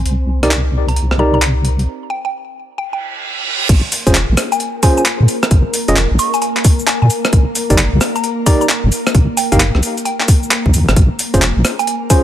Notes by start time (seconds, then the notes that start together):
Already playing: C4 C5
0.05 C2, closed hi-hat
0.43 D#4 G4 A#4 D5, cross-stick, closed hi-hat
0.51 clap, closed hi-hat
0.88 A#5, closed hi-hat
0.96 closed hi-hat
1.11 cross-stick
1.19 D#4 G4 A#4 D5 A#5
1.34 A#5
1.42 clap, closed hi-hat
1.65 closed hi-hat
1.79 closed hi-hat
2.10 G5
2.25 G5
2.78 G5, reverse cymbal
2.93 G5
3.69 A#1 A#3 A#4, kick, closed hi-hat, crash, shaker
3.92 open hi-hat, shaker
4.07 F1 C#4 F4 G#4 C5, kick, closed hi-hat, shaker
4.15 clap, closed hi-hat, shaker
4.29 A#1
4.37 cross-stick, open hi-hat, shaker
4.52 G#5, closed hi-hat, shaker
4.60 closed hi-hat, shaker
4.83 C#4 F4 G#4 C5 G#5, kick, open hi-hat, shaker
4.97 G#5, shaker
5.05 clap, closed hi-hat, shaker
5.20 A#2
5.28 open hi-hat, shaker
5.43 cross-stick, closed hi-hat, shaker
5.51 A#1, kick, closed hi-hat, shaker
5.74 open hi-hat, shaker
5.88 F1 C#4 F4 G#4 D#5, closed hi-hat, shaker
5.96 clap, closed hi-hat, shaker
6.11 A#1
6.19 C#6, open hi-hat, shaker
6.34 G#5, closed hi-hat, shaker
6.42 G#5, closed hi-hat, shaker
6.57 clap
6.64 kick, open hi-hat, shaker
6.79 shaker
6.87 G#5, clap, closed hi-hat, shaker
7.02 A#2 G#5
7.10 open hi-hat, shaker
7.25 cross-stick, closed hi-hat, shaker
7.33 C2, kick, closed hi-hat, shaker
7.55 open hi-hat, shaker
7.70 G1 D#4 G4 A#4 D5, kick, closed hi-hat, shaker
7.78 clap, closed hi-hat, shaker
7.93 C2
8.01 cross-stick, open hi-hat, shaker
8.16 A#5, closed hi-hat, shaker
8.24 closed hi-hat, shaker
8.46 D#4 G4 A#4 D5 A#5, kick, open hi-hat, shaker
8.61 A#5, shaker
8.69 clap, closed hi-hat, shaker
8.84 G1
8.92 open hi-hat, shaker
9.07 cross-stick, closed hi-hat, shaker
9.15 C2, kick, closed hi-hat, shaker
9.37 G5, open hi-hat, shaker
9.52 G1 D#4 G4 A#4 F5 G5, kick, closed hi-hat, shaker
9.60 clap, closed hi-hat, shaker
9.75 C2, cross-stick
9.83 open hi-hat, shaker
9.98 closed hi-hat, shaker
10.05 G5, closed hi-hat, shaker
10.20 G5, clap
10.28 kick, open hi-hat, shaker
10.43 shaker
10.51 clap, closed hi-hat, shaker
10.66 C2, kick
10.74 D#2, open hi-hat, shaker
10.88 G1, cross-stick, closed hi-hat, shaker
10.96 A#1 A#3 A#4, kick, closed hi-hat, shaker
11.19 open hi-hat, shaker
11.34 F1 C#4 F4 G#4 C5, kick, closed hi-hat, shaker
11.42 clap, closed hi-hat, shaker
11.57 A#1
11.65 cross-stick, open hi-hat, shaker
11.79 G#5, closed hi-hat, shaker
11.87 closed hi-hat, shaker
12.10 C#4 F4 G#4 C5 G#5, kick, open hi-hat, shaker